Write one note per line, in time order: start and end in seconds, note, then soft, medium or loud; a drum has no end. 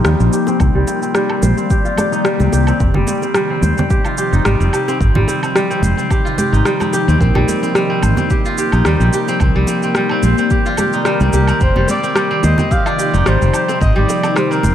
0.00 11.57 C3 medium
0.00 0.58 F3 medium
0.00 2.76 A#3 medium
0.00 0.20 C4 medium
0.00 0.58 D#4 medium
0.00 1.55 D#4 medium
0.00 1.16 F4 loud
0.00 0.33 G4 medium
0.00 0.41 C5 medium
0.05 0.14 D#2 medium
0.05 0.65 G3 medium
0.05 cross-stick loud
0.05 shaker soft
0.20 0.28 A#1 medium
0.20 0.47 C4 medium
0.20 shaker soft
0.33 1.70 G4 medium
0.33 shaker medium
0.47 0.60 C4 medium
0.47 high bongo medium
0.47 shaker soft
0.60 0.69 C2 medium
0.60 7.17 D#3 medium
0.60 2.78 G3 medium
0.60 0.87 C4 medium
0.60 2.78 D5 medium
0.60 kick loud
0.60 low woodblock medium
0.60 shaker soft
0.75 0.83 C2 medium
0.75 1.14 G3 medium
0.87 1.02 C4 medium
0.87 high bongo medium
0.87 shaker medium
1.02 1.29 C4 medium
1.02 shaker soft
1.15 2.24 G3 loud
1.15 cross-stick medium
1.15 shaker soft
1.30 1.57 C4 medium
1.30 low woodblock medium
1.43 1.52 A#1 medium
1.43 2.61 C5 medium
1.43 high conga medium
1.43 shaker medium
1.57 2.40 C4 medium
1.57 shaker soft
1.70 1.97 G4 medium
1.70 kick loud
1.70 shaker soft
1.85 3.36 F4 loud
1.85 shaker soft
1.98 2.52 G4 medium
1.98 high bongo medium
1.98 high conga medium
1.98 low woodblock medium
1.98 shaker medium
2.12 3.74 D#4 medium
2.12 shaker soft
2.25 2.85 G3 medium
2.25 cross-stick loud
2.25 shaker soft
2.40 2.48 C2 medium
2.40 2.67 C4 medium
2.40 high bongo soft
2.40 high conga medium
2.40 shaker soft
2.53 2.70 C2 medium
2.53 3.90 G4 medium
2.53 high bongo medium
2.53 shaker medium
2.67 2.80 C4 medium
2.67 low woodblock medium
2.67 shaker soft
2.80 2.89 F1 medium
2.80 4.99 F3 medium
2.80 3.07 C4 medium
2.80 4.99 D#4 loud
2.80 kick loud
2.80 shaker soft
2.94 3.03 F1 medium
2.94 3.34 G3 loud
2.94 low conga medium
3.07 3.22 C4 medium
3.07 high bongo medium
3.07 high conga medium
3.07 shaker medium
3.22 3.50 C4 medium
3.22 high bongo soft
3.22 shaker soft
3.34 4.44 G3 medium
3.34 cross-stick medium
3.34 low woodblock medium
3.34 shaker soft
3.50 3.77 C4 medium
3.62 3.72 D#2 medium
3.62 4.81 C5 medium
3.62 high conga medium
3.62 shaker medium
3.78 4.60 C4 medium
3.78 low conga medium
3.78 shaker soft
3.90 4.17 G4 medium
3.90 kick loud
3.90 shaker soft
4.05 5.56 F4 loud
4.05 low woodblock medium
4.05 shaker soft
4.18 4.73 G4 medium
4.18 shaker medium
4.33 4.40 F1 medium
4.33 5.95 D#4 medium
4.33 shaker soft
4.45 4.55 G#1 medium
4.45 5.05 G3 medium
4.45 cross-stick loud
4.45 shaker soft
4.60 4.68 F1 medium
4.60 4.88 C4 medium
4.60 shaker soft
4.73 6.10 G4 medium
4.73 low woodblock medium
4.73 shaker medium
4.88 5.00 C4 medium
4.88 high bongo soft
4.88 shaker soft
5.00 5.10 G#1 medium
5.00 9.37 F3 medium
5.00 5.27 C4 medium
5.00 9.37 D#4 medium
5.00 kick loud
5.00 shaker soft
5.15 5.23 G#1 medium
5.15 5.55 G3 loud
5.15 low conga medium
5.28 5.43 C4 medium
5.28 high bongo medium
5.28 shaker medium
5.43 5.70 C4 medium
5.43 low woodblock medium
5.43 shaker soft
5.56 6.65 G3 medium
5.56 cross-stick medium
5.56 shaker soft
5.70 5.97 C4 medium
5.70 shaker soft
5.82 5.92 F1 loud
5.82 7.02 C5 medium
5.82 high conga medium
5.82 shaker medium
5.97 6.80 C4 medium
5.97 shaker soft
6.10 6.37 G4 medium
6.10 kick loud
6.10 low woodblock medium
6.10 shaker soft
6.25 7.76 F4 loud
6.25 shaker soft
6.38 6.93 G4 medium
6.38 high bongo medium
6.38 high conga medium
6.38 shaker medium
6.53 6.60 G#1 medium
6.53 8.15 D#4 medium
6.53 shaker soft
6.65 7.26 G3 medium
6.65 cross-stick medium
6.65 shaker soft
6.80 7.08 C4 medium
6.80 high bongo soft
6.80 high conga medium
6.80 low woodblock medium
6.80 shaker soft
6.93 8.30 G4 medium
6.93 high bongo medium
6.93 shaker medium
7.08 7.16 D#2 medium
7.08 7.20 C4 medium
7.08 shaker soft
7.20 7.30 A#1 medium
7.20 11.57 A#3 medium
7.20 14.75 A#3 medium
7.20 7.48 C4 medium
7.20 14.75 A#4 medium
7.20 kick loud
7.20 shaker soft
7.35 7.43 A#1 medium
7.35 7.74 G3 loud
7.35 low conga medium
7.35 low woodblock medium
7.48 7.62 C4 medium
7.48 high bongo medium
7.48 high conga medium
7.48 shaker medium
7.63 7.89 C4 medium
7.63 high bongo soft
7.63 shaker soft
7.75 8.85 G3 medium
7.75 cross-stick medium
7.75 shaker soft
7.90 8.17 C4 medium
8.03 8.12 G#1 loud
8.03 9.21 C5 medium
8.03 high conga medium
8.03 low woodblock medium
8.03 shaker medium
8.17 9.00 C4 medium
8.17 low conga medium
8.17 shaker soft
8.30 8.58 G4 medium
8.30 kick loud
8.30 shaker soft
8.45 9.97 F4 loud
8.45 shaker soft
8.58 9.13 G4 medium
8.58 shaker medium
8.72 8.81 A#1 loud
8.72 10.35 D#4 medium
8.72 low woodblock medium
8.72 shaker soft
8.85 8.95 D#2 medium
8.85 9.46 G3 medium
8.85 cross-stick medium
8.85 shaker soft
9.00 9.08 A#1 loud
9.00 9.28 C4 medium
9.00 shaker soft
9.13 10.50 G4 medium
9.13 shaker medium
9.28 9.41 C4 loud
9.28 high bongo soft
9.28 shaker soft
9.40 9.50 C2 medium
9.40 14.75 D#3 medium
9.40 11.58 G3 medium
9.40 9.68 C4 medium
9.40 11.58 D5 medium
9.40 kick loud
9.40 low woodblock medium
9.40 shaker soft
9.55 9.63 C2 medium
9.55 9.95 G3 loud
9.67 9.83 C4 medium
9.67 high bongo medium
9.67 shaker medium
9.83 10.11 C4 medium
9.83 shaker soft
9.95 11.05 G3 loud
9.95 cross-stick medium
9.95 shaker soft
10.09 10.38 C4 loud
10.09 low woodblock medium
10.23 10.32 A#1 medium
10.23 11.43 C5 medium
10.23 high conga medium
10.23 shaker medium
10.38 11.20 C4 medium
10.38 shaker soft
10.51 10.78 G4 medium
10.51 kick medium
10.51 shaker soft
10.66 12.17 F4 loud
10.66 shaker soft
10.77 11.33 G4 medium
10.77 high bongo medium
10.77 high conga medium
10.77 low woodblock medium
10.77 shaker medium
10.93 12.56 D#4 medium
10.93 shaker soft
11.05 11.66 G3 medium
11.05 11.64 A#4 medium
11.05 cross-stick medium
11.05 shaker soft
11.20 11.28 C2 medium
11.20 11.48 C4 medium
11.20 high bongo soft
11.20 high conga medium
11.20 shaker soft
11.33 11.51 C2 medium
11.33 12.71 G4 medium
11.33 high bongo medium
11.33 shaker medium
11.48 11.61 C4 loud
11.48 low woodblock medium
11.48 shaker soft
11.61 11.70 F1 medium
11.61 13.79 C3 medium
11.61 14.75 F3 medium
11.61 11.89 C4 medium
11.61 14.75 D#4 loud
11.61 11.89 C5 loud
11.61 kick loud
11.61 shaker soft
11.76 11.84 F1 medium
11.76 12.15 G3 medium
11.76 low conga medium
11.88 12.03 C4 medium
11.88 12.46 D5 loud
11.88 high bongo medium
11.88 high conga medium
11.88 shaker medium
12.03 12.30 C4 medium
12.03 high bongo soft
12.03 shaker soft
12.16 13.25 G3 medium
12.16 cross-stick medium
12.16 low woodblock medium
12.16 shaker soft
12.31 12.58 C4 medium
12.43 12.53 D#2 loud
12.43 13.62 C5 medium
12.43 12.74 D#5 loud
12.43 high conga medium
12.43 shaker medium
12.58 13.41 C4 medium
12.58 low conga medium
12.58 shaker soft
12.71 12.98 G4 medium
12.71 12.88 F5 loud
12.71 kick medium
12.71 shaker soft
12.86 14.37 F4 loud
12.86 13.29 D5 loud
12.86 low woodblock medium
12.86 shaker soft
12.99 13.54 G4 medium
12.99 shaker medium
13.14 13.21 F1 loud
13.14 14.75 D#4 medium
13.14 shaker soft
13.26 13.36 G#1 medium
13.26 13.86 G3 medium
13.26 13.81 C5 loud
13.26 cross-stick medium
13.26 shaker soft
13.42 13.49 F1 loud
13.42 13.68 C4 medium
13.42 shaker soft
13.54 14.75 G4 medium
13.54 low woodblock medium
13.54 shaker medium
13.68 13.80 C4 medium
13.68 high bongo medium
13.68 shaker soft
13.81 13.90 G#1 medium
13.81 14.75 C3 medium
13.81 14.08 C4 medium
13.81 13.95 D#5 loud
13.81 kick loud
13.81 shaker soft
13.96 14.04 G#1 medium
13.96 14.35 G3 loud
13.96 14.34 D5 loud
14.08 14.23 C4 medium
14.08 high bongo medium
14.08 shaker medium
14.23 14.50 C4 medium
14.23 high bongo soft
14.23 low woodblock medium
14.23 shaker soft
14.36 14.75 G3 loud
14.36 14.53 C5 medium
14.36 cross-stick medium
14.36 shaker soft
14.51 14.75 C4 medium
14.51 14.75 A#4 loud
14.51 shaker soft
14.63 14.73 F1 loud
14.63 14.75 C5 medium
14.63 high conga medium
14.63 shaker medium